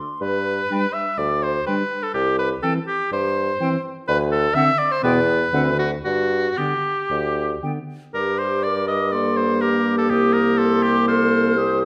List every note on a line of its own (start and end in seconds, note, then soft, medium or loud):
0.00 0.21 C6 soft
0.21 0.62 G2 soft
0.21 0.95 B4 medium
0.70 0.87 G3 soft
0.70 0.86 D4 soft
0.70 0.80 G5 soft
0.94 1.20 E5 medium
1.18 1.58 D2 soft
1.18 1.44 D5 soft
1.43 1.66 C5 medium
1.67 1.83 G3 soft
1.67 1.83 D4 soft
1.67 2.05 B4 medium
1.67 1.75 G5 soft
2.03 2.14 A4 soft
2.14 2.55 C2 soft
2.14 2.38 G4 medium
2.39 2.50 B4 medium
2.63 2.79 E3 soft
2.63 2.79 C4 soft
2.63 2.74 A4 medium
2.63 2.72 G5 soft
2.87 3.12 G4 medium
3.12 3.52 G2 soft
3.12 3.83 C5 medium
3.60 3.76 E3 soft
3.60 3.77 C4 soft
3.60 3.69 G5 soft
4.08 4.48 D2 medium
4.08 4.18 B4 medium
4.31 4.56 A4 medium
4.55 4.71 D3 soft
4.55 4.71 C4 soft
4.55 4.80 E5 medium
4.55 4.65 F#5 medium
4.79 4.93 D5 medium
4.92 5.03 C5 medium
5.03 5.45 E2 medium
5.03 5.19 B2 soft
5.03 5.19 B3 soft
5.03 5.77 B4 medium
5.03 5.13 G5 soft
5.53 5.96 D2 medium
5.53 5.69 D3 soft
5.53 5.70 C4 soft
5.53 5.63 F#5 soft
5.79 5.91 F#4 medium
6.05 6.49 G2 medium
6.05 6.59 F#4 medium
6.57 6.74 D3 soft
6.57 6.74 B3 soft
6.57 7.63 G4 soft
6.57 6.68 G5 soft
7.11 7.54 D2 soft
7.63 7.79 D3 soft
7.63 7.79 B3 soft
7.63 7.72 G5 soft
8.14 10.06 G2 soft
8.14 8.61 G4 soft
8.14 8.40 A#4 soft
8.14 9.09 D6 soft
8.38 8.65 C5 medium
8.63 9.14 A#4 soft
8.63 8.87 D5 medium
8.88 9.14 D#5 medium
9.12 11.58 A#3 soft
9.12 9.62 A4 soft
9.12 9.38 D5 soft
9.12 9.61 C6 soft
9.36 9.63 C5 soft
9.61 10.09 G4 soft
9.61 9.97 A#4 medium
9.61 10.09 D6 soft
9.98 10.12 A4 medium
10.10 11.85 C2 soft
10.10 10.35 G4 medium
10.10 11.06 G4 soft
10.10 10.60 D#6 soft
10.33 10.60 A#4 medium
10.58 10.84 A4 medium
10.58 11.09 C6 soft
10.83 11.07 G4 medium
11.08 11.56 A4 soft
11.08 11.79 C5 medium
11.08 11.59 F6 soft
11.57 11.85 G4 medium
11.57 11.85 G4 soft
11.57 11.85 D#6 soft